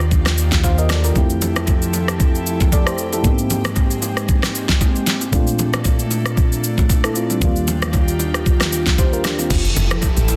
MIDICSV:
0, 0, Header, 1, 7, 480
1, 0, Start_track
1, 0, Key_signature, -1, "major"
1, 0, Tempo, 521739
1, 1064, Time_signature, 4, 2, 24, 8
1, 9532, End_track
2, 0, Start_track
2, 0, Title_t, "FM electric piano"
2, 0, Program_c, 0, 5
2, 0, Control_c, 0, 64, 127
2, 0, Note_on_c, 0, 58, 77
2, 0, Note_on_c, 0, 62, 74
2, 0, Note_on_c, 0, 65, 68
2, 0, Note_on_c, 0, 67, 88
2, 560, Note_off_c, 0, 65, 0
2, 567, Note_off_c, 0, 67, 0
2, 587, Note_on_c, 0, 77, 60
2, 593, Note_on_c, 0, 72, 52
2, 711, Note_off_c, 0, 77, 0
2, 714, Note_off_c, 0, 72, 0
2, 719, Note_on_c, 0, 75, 71
2, 724, Note_on_c, 0, 70, 63
2, 820, Note_off_c, 0, 75, 0
2, 823, Note_off_c, 0, 70, 0
2, 826, Note_on_c, 0, 74, 67
2, 832, Note_on_c, 0, 69, 58
2, 951, Note_off_c, 0, 74, 0
2, 954, Note_off_c, 0, 69, 0
2, 958, Note_on_c, 0, 70, 67
2, 964, Note_on_c, 0, 65, 57
2, 1020, Note_off_c, 0, 58, 0
2, 1026, Note_off_c, 0, 62, 0
2, 1049, Note_on_c, 0, 41, 78
2, 1058, Note_on_c, 0, 57, 68
2, 1068, Note_on_c, 0, 60, 73
2, 1075, Control_c, 0, 64, 0
2, 1077, Note_on_c, 0, 64, 72
2, 1086, Note_on_c, 0, 67, 81
2, 1185, Note_off_c, 0, 70, 0
2, 1188, Note_off_c, 0, 65, 0
2, 1253, Control_c, 0, 64, 127
2, 2482, Note_off_c, 0, 64, 0
2, 2487, Note_off_c, 0, 67, 0
2, 2508, Note_on_c, 0, 74, 66
2, 2513, Note_on_c, 0, 69, 58
2, 2631, Note_off_c, 0, 74, 0
2, 2634, Note_off_c, 0, 69, 0
2, 2640, Note_on_c, 0, 72, 74
2, 2646, Note_on_c, 0, 67, 60
2, 2866, Note_off_c, 0, 72, 0
2, 2869, Note_off_c, 0, 67, 0
2, 2880, Note_on_c, 0, 69, 69
2, 2885, Note_on_c, 0, 64, 58
2, 2940, Note_off_c, 0, 41, 0
2, 2945, Note_off_c, 0, 57, 0
2, 2949, Note_off_c, 0, 60, 0
2, 2968, Note_on_c, 0, 44, 78
2, 2977, Note_on_c, 0, 58, 71
2, 2987, Note_on_c, 0, 59, 58
2, 2996, Control_c, 0, 64, 0
2, 2996, Note_on_c, 0, 63, 69
2, 3005, Note_on_c, 0, 67, 83
2, 3044, Note_on_c, 0, 60, 73
2, 3049, Note_off_c, 0, 59, 0
2, 3106, Note_off_c, 0, 69, 0
2, 3109, Note_off_c, 0, 64, 0
2, 3153, Control_c, 0, 64, 127
2, 4859, Note_off_c, 0, 44, 0
2, 4864, Note_off_c, 0, 58, 0
2, 4873, Note_off_c, 0, 63, 0
2, 4878, Note_off_c, 0, 67, 0
2, 4888, Note_on_c, 0, 46, 79
2, 4895, Note_off_c, 0, 60, 0
2, 4896, Note_on_c, 0, 57, 74
2, 4906, Note_on_c, 0, 60, 71
2, 4915, Note_on_c, 0, 62, 72
2, 4918, Control_c, 0, 64, 0
2, 4925, Note_on_c, 0, 65, 88
2, 5099, Control_c, 0, 64, 127
2, 6076, Note_off_c, 0, 57, 0
2, 6081, Note_off_c, 0, 60, 0
2, 6086, Note_off_c, 0, 62, 0
2, 6091, Note_off_c, 0, 65, 0
2, 6479, Note_on_c, 0, 69, 64
2, 6484, Note_on_c, 0, 64, 54
2, 6542, Note_off_c, 0, 46, 0
2, 6580, Note_off_c, 0, 69, 0
2, 6583, Note_off_c, 0, 64, 0
2, 6586, Note_on_c, 0, 65, 67
2, 6591, Note_on_c, 0, 60, 60
2, 6707, Note_off_c, 0, 60, 0
2, 6710, Note_off_c, 0, 65, 0
2, 6718, Note_on_c, 0, 60, 67
2, 6724, Note_on_c, 0, 55, 58
2, 6809, Note_on_c, 0, 39, 79
2, 6818, Note_on_c, 0, 53, 57
2, 6827, Note_on_c, 0, 58, 73
2, 6835, Control_c, 0, 64, 0
2, 6837, Note_on_c, 0, 62, 70
2, 6846, Note_on_c, 0, 65, 86
2, 6865, Note_off_c, 0, 55, 0
2, 6876, Note_on_c, 0, 55, 70
2, 6885, Note_off_c, 0, 53, 0
2, 6945, Note_off_c, 0, 60, 0
2, 7008, Control_c, 0, 64, 127
2, 8227, Note_off_c, 0, 39, 0
2, 8237, Note_off_c, 0, 58, 0
2, 8242, Note_off_c, 0, 62, 0
2, 8247, Note_off_c, 0, 65, 0
2, 8262, Note_off_c, 0, 55, 0
2, 8267, Note_on_c, 0, 72, 66
2, 8272, Note_on_c, 0, 67, 55
2, 8391, Note_off_c, 0, 72, 0
2, 8394, Note_off_c, 0, 67, 0
2, 8399, Note_on_c, 0, 70, 70
2, 8404, Note_on_c, 0, 65, 60
2, 8500, Note_off_c, 0, 70, 0
2, 8503, Note_off_c, 0, 65, 0
2, 8512, Note_on_c, 0, 62, 58
2, 8634, Note_off_c, 0, 62, 0
2, 8639, Note_on_c, 0, 65, 63
2, 8644, Note_on_c, 0, 60, 58
2, 8758, Control_c, 0, 64, 0
2, 8866, Note_off_c, 0, 65, 0
2, 8868, Note_off_c, 0, 60, 0
2, 9532, End_track
3, 0, Start_track
3, 0, Title_t, "Analog synth pad"
3, 0, Program_c, 1, 89
3, 0, Note_on_c, 1, 51, 83
3, 0, Note_on_c, 1, 62, 77
3, 0, Note_on_c, 1, 65, 74
3, 0, Note_on_c, 1, 67, 89
3, 1045, Note_off_c, 1, 51, 0
3, 1045, Note_off_c, 1, 62, 0
3, 1045, Note_off_c, 1, 65, 0
3, 1065, Note_on_c, 1, 53, 86
3, 1065, Note_on_c, 1, 64, 78
3, 1065, Note_on_c, 1, 69, 89
3, 2965, Note_off_c, 1, 53, 0
3, 2965, Note_off_c, 1, 64, 0
3, 2965, Note_off_c, 1, 69, 0
3, 2986, Note_on_c, 1, 56, 84
3, 2986, Note_on_c, 1, 60, 74
3, 4868, Note_off_c, 1, 67, 0
3, 4886, Note_off_c, 1, 56, 0
3, 4886, Note_off_c, 1, 60, 0
3, 4904, Note_on_c, 1, 46, 78
3, 4904, Note_on_c, 1, 57, 82
3, 4904, Note_on_c, 1, 62, 90
3, 6805, Note_off_c, 1, 46, 0
3, 6805, Note_off_c, 1, 57, 0
3, 6824, Note_on_c, 1, 51, 84
3, 6824, Note_on_c, 1, 65, 75
3, 6824, Note_on_c, 1, 67, 90
3, 8707, Note_off_c, 1, 62, 0
3, 8725, Note_off_c, 1, 51, 0
3, 8725, Note_off_c, 1, 65, 0
3, 8725, Note_off_c, 1, 67, 0
3, 8744, Note_on_c, 1, 64, 79
3, 8745, Note_on_c, 1, 53, 85
3, 8745, Note_on_c, 1, 67, 78
3, 8745, Note_on_c, 1, 69, 92
3, 9532, Note_off_c, 1, 53, 0
3, 9532, Note_off_c, 1, 64, 0
3, 9532, Note_off_c, 1, 67, 0
3, 9532, Note_off_c, 1, 69, 0
3, 9532, End_track
4, 0, Start_track
4, 0, Title_t, "Sub bass"
4, 0, Program_c, 2, 38
4, 0, Note_on_c, 2, 39, 82
4, 1027, Note_off_c, 2, 39, 0
4, 9532, End_track
5, 0, Start_track
5, 0, Title_t, "Log drum bass"
5, 0, Program_c, 3, 39
5, 8744, Note_on_c, 3, 29, 108
5, 8962, Note_off_c, 3, 29, 0
5, 8985, Note_on_c, 3, 29, 107
5, 9322, Note_off_c, 3, 29, 0
5, 9356, Note_on_c, 3, 33, 93
5, 9532, Note_off_c, 3, 33, 0
5, 9532, End_track
6, 0, Start_track
6, 0, Title_t, "Impact"
6, 0, Program_c, 4, 103
6, 8745, Note_on_c, 4, 60, 86
6, 9532, Note_off_c, 4, 60, 0
6, 9532, End_track
7, 0, Start_track
7, 0, Title_t, "Drums"
7, 0, Note_on_c, 9, 37, 83
7, 0, Note_on_c, 9, 82, 53
7, 89, Note_off_c, 9, 37, 0
7, 92, Note_off_c, 9, 82, 0
7, 105, Note_on_c, 9, 36, 115
7, 105, Note_on_c, 9, 82, 69
7, 109, Note_on_c, 9, 64, 67
7, 197, Note_off_c, 9, 36, 0
7, 197, Note_off_c, 9, 82, 0
7, 201, Note_off_c, 9, 64, 0
7, 237, Note_on_c, 9, 37, 91
7, 237, Note_on_c, 9, 38, 66
7, 242, Note_on_c, 9, 82, 50
7, 329, Note_off_c, 9, 37, 0
7, 329, Note_off_c, 9, 38, 0
7, 334, Note_off_c, 9, 82, 0
7, 349, Note_on_c, 9, 82, 94
7, 441, Note_off_c, 9, 82, 0
7, 476, Note_on_c, 9, 38, 70
7, 477, Note_on_c, 9, 36, 83
7, 477, Note_on_c, 9, 82, 49
7, 488, Note_on_c, 9, 61, 72
7, 568, Note_off_c, 9, 38, 0
7, 569, Note_off_c, 9, 36, 0
7, 569, Note_off_c, 9, 82, 0
7, 580, Note_off_c, 9, 61, 0
7, 585, Note_on_c, 9, 36, 87
7, 587, Note_on_c, 9, 82, 78
7, 588, Note_on_c, 9, 60, 66
7, 677, Note_off_c, 9, 36, 0
7, 679, Note_off_c, 9, 82, 0
7, 680, Note_off_c, 9, 60, 0
7, 720, Note_on_c, 9, 82, 51
7, 812, Note_off_c, 9, 82, 0
7, 823, Note_on_c, 9, 82, 84
7, 826, Note_on_c, 9, 37, 91
7, 826, Note_on_c, 9, 38, 64
7, 915, Note_off_c, 9, 82, 0
7, 918, Note_off_c, 9, 37, 0
7, 918, Note_off_c, 9, 38, 0
7, 956, Note_on_c, 9, 60, 47
7, 958, Note_on_c, 9, 82, 59
7, 1048, Note_off_c, 9, 60, 0
7, 1050, Note_off_c, 9, 82, 0
7, 1062, Note_on_c, 9, 64, 69
7, 1063, Note_on_c, 9, 82, 72
7, 1064, Note_on_c, 9, 36, 103
7, 1154, Note_off_c, 9, 64, 0
7, 1155, Note_off_c, 9, 82, 0
7, 1156, Note_off_c, 9, 36, 0
7, 1195, Note_on_c, 9, 82, 54
7, 1287, Note_off_c, 9, 82, 0
7, 1302, Note_on_c, 9, 82, 82
7, 1305, Note_on_c, 9, 61, 77
7, 1305, Note_on_c, 9, 64, 74
7, 1394, Note_off_c, 9, 82, 0
7, 1397, Note_off_c, 9, 61, 0
7, 1397, Note_off_c, 9, 64, 0
7, 1436, Note_on_c, 9, 82, 48
7, 1438, Note_on_c, 9, 37, 98
7, 1440, Note_on_c, 9, 61, 76
7, 1528, Note_off_c, 9, 82, 0
7, 1530, Note_off_c, 9, 37, 0
7, 1532, Note_off_c, 9, 61, 0
7, 1537, Note_on_c, 9, 60, 68
7, 1539, Note_on_c, 9, 82, 66
7, 1545, Note_on_c, 9, 36, 86
7, 1629, Note_off_c, 9, 60, 0
7, 1631, Note_off_c, 9, 82, 0
7, 1637, Note_off_c, 9, 36, 0
7, 1674, Note_on_c, 9, 82, 60
7, 1766, Note_off_c, 9, 82, 0
7, 1780, Note_on_c, 9, 60, 60
7, 1781, Note_on_c, 9, 82, 98
7, 1872, Note_off_c, 9, 60, 0
7, 1873, Note_off_c, 9, 82, 0
7, 1916, Note_on_c, 9, 37, 83
7, 1919, Note_on_c, 9, 82, 52
7, 2008, Note_off_c, 9, 37, 0
7, 2011, Note_off_c, 9, 82, 0
7, 2024, Note_on_c, 9, 82, 68
7, 2025, Note_on_c, 9, 36, 110
7, 2029, Note_on_c, 9, 64, 65
7, 2116, Note_off_c, 9, 82, 0
7, 2117, Note_off_c, 9, 36, 0
7, 2121, Note_off_c, 9, 64, 0
7, 2162, Note_on_c, 9, 82, 52
7, 2254, Note_off_c, 9, 82, 0
7, 2268, Note_on_c, 9, 82, 95
7, 2360, Note_off_c, 9, 82, 0
7, 2396, Note_on_c, 9, 82, 48
7, 2397, Note_on_c, 9, 36, 83
7, 2407, Note_on_c, 9, 61, 72
7, 2488, Note_off_c, 9, 82, 0
7, 2489, Note_off_c, 9, 36, 0
7, 2499, Note_off_c, 9, 61, 0
7, 2505, Note_on_c, 9, 36, 88
7, 2506, Note_on_c, 9, 82, 81
7, 2508, Note_on_c, 9, 60, 66
7, 2597, Note_off_c, 9, 36, 0
7, 2598, Note_off_c, 9, 82, 0
7, 2600, Note_off_c, 9, 60, 0
7, 2637, Note_on_c, 9, 37, 92
7, 2640, Note_on_c, 9, 82, 53
7, 2729, Note_off_c, 9, 37, 0
7, 2732, Note_off_c, 9, 82, 0
7, 2743, Note_on_c, 9, 82, 83
7, 2835, Note_off_c, 9, 82, 0
7, 2875, Note_on_c, 9, 60, 45
7, 2878, Note_on_c, 9, 82, 63
7, 2967, Note_off_c, 9, 60, 0
7, 2970, Note_off_c, 9, 82, 0
7, 2982, Note_on_c, 9, 64, 67
7, 2983, Note_on_c, 9, 82, 69
7, 2984, Note_on_c, 9, 36, 103
7, 3074, Note_off_c, 9, 64, 0
7, 3075, Note_off_c, 9, 82, 0
7, 3076, Note_off_c, 9, 36, 0
7, 3113, Note_on_c, 9, 82, 53
7, 3205, Note_off_c, 9, 82, 0
7, 3222, Note_on_c, 9, 82, 85
7, 3224, Note_on_c, 9, 61, 74
7, 3224, Note_on_c, 9, 64, 73
7, 3314, Note_off_c, 9, 82, 0
7, 3316, Note_off_c, 9, 61, 0
7, 3316, Note_off_c, 9, 64, 0
7, 3355, Note_on_c, 9, 82, 48
7, 3357, Note_on_c, 9, 37, 99
7, 3360, Note_on_c, 9, 61, 82
7, 3447, Note_off_c, 9, 82, 0
7, 3449, Note_off_c, 9, 37, 0
7, 3452, Note_off_c, 9, 61, 0
7, 3457, Note_on_c, 9, 60, 67
7, 3458, Note_on_c, 9, 82, 64
7, 3464, Note_on_c, 9, 36, 87
7, 3549, Note_off_c, 9, 60, 0
7, 3550, Note_off_c, 9, 82, 0
7, 3556, Note_off_c, 9, 36, 0
7, 3594, Note_on_c, 9, 82, 59
7, 3686, Note_off_c, 9, 82, 0
7, 3699, Note_on_c, 9, 60, 60
7, 3700, Note_on_c, 9, 82, 99
7, 3791, Note_off_c, 9, 60, 0
7, 3792, Note_off_c, 9, 82, 0
7, 3835, Note_on_c, 9, 37, 83
7, 3838, Note_on_c, 9, 82, 52
7, 3927, Note_off_c, 9, 37, 0
7, 3930, Note_off_c, 9, 82, 0
7, 3943, Note_on_c, 9, 82, 70
7, 3944, Note_on_c, 9, 36, 113
7, 3948, Note_on_c, 9, 64, 64
7, 4035, Note_off_c, 9, 82, 0
7, 4036, Note_off_c, 9, 36, 0
7, 4040, Note_off_c, 9, 64, 0
7, 4076, Note_on_c, 9, 37, 94
7, 4076, Note_on_c, 9, 38, 64
7, 4081, Note_on_c, 9, 82, 55
7, 4168, Note_off_c, 9, 37, 0
7, 4168, Note_off_c, 9, 38, 0
7, 4173, Note_off_c, 9, 82, 0
7, 4187, Note_on_c, 9, 82, 94
7, 4279, Note_off_c, 9, 82, 0
7, 4314, Note_on_c, 9, 38, 72
7, 4315, Note_on_c, 9, 82, 49
7, 4316, Note_on_c, 9, 36, 82
7, 4327, Note_on_c, 9, 61, 71
7, 4406, Note_off_c, 9, 38, 0
7, 4407, Note_off_c, 9, 82, 0
7, 4408, Note_off_c, 9, 36, 0
7, 4419, Note_off_c, 9, 61, 0
7, 4424, Note_on_c, 9, 36, 85
7, 4425, Note_on_c, 9, 82, 79
7, 4426, Note_on_c, 9, 60, 63
7, 4516, Note_off_c, 9, 36, 0
7, 4517, Note_off_c, 9, 82, 0
7, 4518, Note_off_c, 9, 60, 0
7, 4559, Note_on_c, 9, 82, 51
7, 4651, Note_off_c, 9, 82, 0
7, 4662, Note_on_c, 9, 82, 82
7, 4665, Note_on_c, 9, 38, 62
7, 4754, Note_off_c, 9, 82, 0
7, 4757, Note_off_c, 9, 38, 0
7, 4795, Note_on_c, 9, 60, 48
7, 4796, Note_on_c, 9, 82, 62
7, 4887, Note_off_c, 9, 60, 0
7, 4888, Note_off_c, 9, 82, 0
7, 4901, Note_on_c, 9, 64, 71
7, 4902, Note_on_c, 9, 82, 72
7, 4903, Note_on_c, 9, 36, 103
7, 4993, Note_off_c, 9, 64, 0
7, 4994, Note_off_c, 9, 82, 0
7, 4995, Note_off_c, 9, 36, 0
7, 5033, Note_on_c, 9, 82, 56
7, 5125, Note_off_c, 9, 82, 0
7, 5141, Note_on_c, 9, 82, 85
7, 5143, Note_on_c, 9, 61, 76
7, 5143, Note_on_c, 9, 64, 78
7, 5233, Note_off_c, 9, 82, 0
7, 5235, Note_off_c, 9, 61, 0
7, 5235, Note_off_c, 9, 64, 0
7, 5275, Note_on_c, 9, 82, 50
7, 5277, Note_on_c, 9, 37, 99
7, 5279, Note_on_c, 9, 61, 81
7, 5367, Note_off_c, 9, 82, 0
7, 5369, Note_off_c, 9, 37, 0
7, 5371, Note_off_c, 9, 61, 0
7, 5377, Note_on_c, 9, 60, 70
7, 5378, Note_on_c, 9, 82, 68
7, 5384, Note_on_c, 9, 36, 86
7, 5469, Note_off_c, 9, 60, 0
7, 5470, Note_off_c, 9, 82, 0
7, 5476, Note_off_c, 9, 36, 0
7, 5513, Note_on_c, 9, 82, 60
7, 5605, Note_off_c, 9, 82, 0
7, 5619, Note_on_c, 9, 60, 60
7, 5620, Note_on_c, 9, 82, 97
7, 5711, Note_off_c, 9, 60, 0
7, 5712, Note_off_c, 9, 82, 0
7, 5755, Note_on_c, 9, 37, 84
7, 5758, Note_on_c, 9, 82, 52
7, 5847, Note_off_c, 9, 37, 0
7, 5850, Note_off_c, 9, 82, 0
7, 5863, Note_on_c, 9, 82, 68
7, 5864, Note_on_c, 9, 36, 115
7, 5867, Note_on_c, 9, 64, 67
7, 5955, Note_off_c, 9, 82, 0
7, 5956, Note_off_c, 9, 36, 0
7, 5959, Note_off_c, 9, 64, 0
7, 6001, Note_on_c, 9, 82, 54
7, 6093, Note_off_c, 9, 82, 0
7, 6107, Note_on_c, 9, 82, 96
7, 6199, Note_off_c, 9, 82, 0
7, 6235, Note_on_c, 9, 82, 49
7, 6236, Note_on_c, 9, 36, 81
7, 6247, Note_on_c, 9, 61, 71
7, 6327, Note_off_c, 9, 82, 0
7, 6328, Note_off_c, 9, 36, 0
7, 6339, Note_off_c, 9, 61, 0
7, 6344, Note_on_c, 9, 36, 85
7, 6345, Note_on_c, 9, 82, 81
7, 6347, Note_on_c, 9, 60, 64
7, 6436, Note_off_c, 9, 36, 0
7, 6437, Note_off_c, 9, 82, 0
7, 6439, Note_off_c, 9, 60, 0
7, 6476, Note_on_c, 9, 37, 89
7, 6479, Note_on_c, 9, 82, 55
7, 6568, Note_off_c, 9, 37, 0
7, 6571, Note_off_c, 9, 82, 0
7, 6582, Note_on_c, 9, 82, 86
7, 6674, Note_off_c, 9, 82, 0
7, 6715, Note_on_c, 9, 60, 49
7, 6717, Note_on_c, 9, 82, 61
7, 6807, Note_off_c, 9, 60, 0
7, 6809, Note_off_c, 9, 82, 0
7, 6821, Note_on_c, 9, 64, 67
7, 6823, Note_on_c, 9, 82, 74
7, 6824, Note_on_c, 9, 36, 108
7, 6913, Note_off_c, 9, 64, 0
7, 6915, Note_off_c, 9, 82, 0
7, 6916, Note_off_c, 9, 36, 0
7, 6954, Note_on_c, 9, 82, 55
7, 7046, Note_off_c, 9, 82, 0
7, 7061, Note_on_c, 9, 82, 87
7, 7064, Note_on_c, 9, 61, 76
7, 7064, Note_on_c, 9, 64, 76
7, 7153, Note_off_c, 9, 82, 0
7, 7156, Note_off_c, 9, 61, 0
7, 7156, Note_off_c, 9, 64, 0
7, 7196, Note_on_c, 9, 82, 50
7, 7198, Note_on_c, 9, 37, 95
7, 7199, Note_on_c, 9, 61, 76
7, 7288, Note_off_c, 9, 82, 0
7, 7290, Note_off_c, 9, 37, 0
7, 7291, Note_off_c, 9, 61, 0
7, 7296, Note_on_c, 9, 60, 70
7, 7299, Note_on_c, 9, 82, 67
7, 7305, Note_on_c, 9, 36, 91
7, 7388, Note_off_c, 9, 60, 0
7, 7391, Note_off_c, 9, 82, 0
7, 7397, Note_off_c, 9, 36, 0
7, 7435, Note_on_c, 9, 82, 57
7, 7527, Note_off_c, 9, 82, 0
7, 7539, Note_on_c, 9, 60, 59
7, 7541, Note_on_c, 9, 82, 96
7, 7631, Note_off_c, 9, 60, 0
7, 7633, Note_off_c, 9, 82, 0
7, 7676, Note_on_c, 9, 37, 83
7, 7679, Note_on_c, 9, 82, 56
7, 7768, Note_off_c, 9, 37, 0
7, 7771, Note_off_c, 9, 82, 0
7, 7784, Note_on_c, 9, 82, 69
7, 7785, Note_on_c, 9, 36, 118
7, 7788, Note_on_c, 9, 64, 66
7, 7876, Note_off_c, 9, 82, 0
7, 7877, Note_off_c, 9, 36, 0
7, 7880, Note_off_c, 9, 64, 0
7, 7917, Note_on_c, 9, 37, 89
7, 7917, Note_on_c, 9, 38, 63
7, 7922, Note_on_c, 9, 82, 53
7, 8009, Note_off_c, 9, 37, 0
7, 8009, Note_off_c, 9, 38, 0
7, 8014, Note_off_c, 9, 82, 0
7, 8028, Note_on_c, 9, 82, 93
7, 8120, Note_off_c, 9, 82, 0
7, 8155, Note_on_c, 9, 38, 73
7, 8157, Note_on_c, 9, 36, 81
7, 8157, Note_on_c, 9, 82, 48
7, 8167, Note_on_c, 9, 61, 73
7, 8247, Note_off_c, 9, 38, 0
7, 8249, Note_off_c, 9, 36, 0
7, 8249, Note_off_c, 9, 82, 0
7, 8259, Note_off_c, 9, 61, 0
7, 8265, Note_on_c, 9, 36, 86
7, 8266, Note_on_c, 9, 82, 81
7, 8267, Note_on_c, 9, 60, 66
7, 8357, Note_off_c, 9, 36, 0
7, 8358, Note_off_c, 9, 82, 0
7, 8359, Note_off_c, 9, 60, 0
7, 8401, Note_on_c, 9, 82, 51
7, 8493, Note_off_c, 9, 82, 0
7, 8504, Note_on_c, 9, 82, 80
7, 8507, Note_on_c, 9, 37, 86
7, 8507, Note_on_c, 9, 38, 63
7, 8596, Note_off_c, 9, 82, 0
7, 8599, Note_off_c, 9, 37, 0
7, 8599, Note_off_c, 9, 38, 0
7, 8635, Note_on_c, 9, 60, 48
7, 8638, Note_on_c, 9, 82, 61
7, 8727, Note_off_c, 9, 60, 0
7, 8730, Note_off_c, 9, 82, 0
7, 8741, Note_on_c, 9, 64, 74
7, 8744, Note_on_c, 9, 36, 106
7, 8744, Note_on_c, 9, 82, 74
7, 8745, Note_on_c, 9, 49, 99
7, 8833, Note_off_c, 9, 64, 0
7, 8836, Note_off_c, 9, 36, 0
7, 8836, Note_off_c, 9, 82, 0
7, 8837, Note_off_c, 9, 49, 0
7, 8875, Note_on_c, 9, 82, 55
7, 8967, Note_off_c, 9, 82, 0
7, 8983, Note_on_c, 9, 82, 91
7, 8984, Note_on_c, 9, 61, 78
7, 8984, Note_on_c, 9, 64, 78
7, 9075, Note_off_c, 9, 82, 0
7, 9076, Note_off_c, 9, 61, 0
7, 9076, Note_off_c, 9, 64, 0
7, 9117, Note_on_c, 9, 82, 52
7, 9119, Note_on_c, 9, 37, 103
7, 9120, Note_on_c, 9, 61, 85
7, 9209, Note_off_c, 9, 82, 0
7, 9211, Note_off_c, 9, 37, 0
7, 9212, Note_off_c, 9, 61, 0
7, 9217, Note_on_c, 9, 60, 75
7, 9219, Note_on_c, 9, 82, 72
7, 9225, Note_on_c, 9, 36, 89
7, 9309, Note_off_c, 9, 60, 0
7, 9311, Note_off_c, 9, 82, 0
7, 9317, Note_off_c, 9, 36, 0
7, 9355, Note_on_c, 9, 82, 62
7, 9447, Note_off_c, 9, 82, 0
7, 9460, Note_on_c, 9, 60, 65
7, 9462, Note_on_c, 9, 82, 103
7, 9532, Note_off_c, 9, 60, 0
7, 9532, Note_off_c, 9, 82, 0
7, 9532, End_track
0, 0, End_of_file